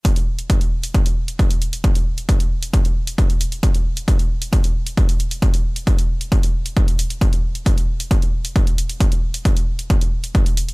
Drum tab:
HH |xx-xxx-xxx-xxxxx|xx-xxx-xxx-xxxxx|xx-xxx-xxx-xxxxx|xx-xxx-xxx-xxxxx|
BD |o---o---o---o---|o---o---o---o---|o---o---o---o---|o---o---o---o---|

HH |xx-xxx-xxx-xxxxx|xx-xxx-xxx-xxxxx|
BD |o---o---o---o---|o---o---o---o---|